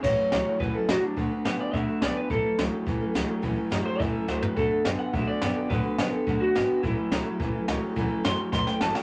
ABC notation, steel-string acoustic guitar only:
X:1
M:4/4
L:1/8
Q:1/4=212
K:A
V:1 name="Steel-string acoustic guitar"
[A,,E,F,A,CF] [F,A,CF] [A,,E,F,A,CF] [F,A,CF] [F,A,CF] [F,A,CF] [A,,E,F,A,CF] [F,A,CF] | [D,F,A,FB] [A,FB] [D,F,A,FB] [A,FB] [F,A,FB] [A,FB] [D,F,A,FB] [A,FB] | [A,,E,F,A,CA] [F,A,CA] [A,,E,F,A,CA] [F,A,CA] [F,A,CA] [F,A,CA] [A,,E,F,A,CA] [F,A,CA] | [A,,E,F,A,CA] [F,A,CA] [A,,E,F,A,CA] [F,A,CA] [F,A,CA] [F,A,CA] [A,,E,F,A,CA] [F,A,CA] |
[D,F,B,FA] [B,FA] [D,F,B,FA] [B,FA] [F,B,FA] [B,FA] [D,F,B,FA] [B,FA] | [D,F,B,FA] [B,FA] [D,F,B,FA] [B,FA] [F,B,FA] [B,FA] [D,F,B,FA] [B,FA] | [A,,E,F,A,CA] [F,A,CA] [A,,E,F,A,CA] [F,A,CA] [F,A,CA] [F,A,CA] [A,,E,F,A,CA] [F,A,CA] | [A,,E,F,A,CA] [F,A,CA] [A,,E,F,A,CA] [F,A,CA] [F,A,CA] [F,A,CA] [A,,E,F,A,CA] [F,A,CA] |]